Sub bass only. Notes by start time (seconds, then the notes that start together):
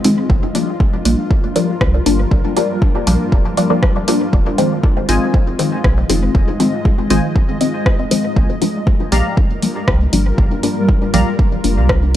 0.30 G1
1.05 A#1
1.81 C2
2.06 G1
2.31 G1
3.07 A#1
3.32 F1
4.33 F1
5.09 G#1
5.84 A#1
6.10 F1
6.35 F1
7.10 G#1
8.36 G1
9.12 A#1
9.88 C2
10.13 G1
10.38 G1
11.14 A#1
11.64 F1
11.77 C2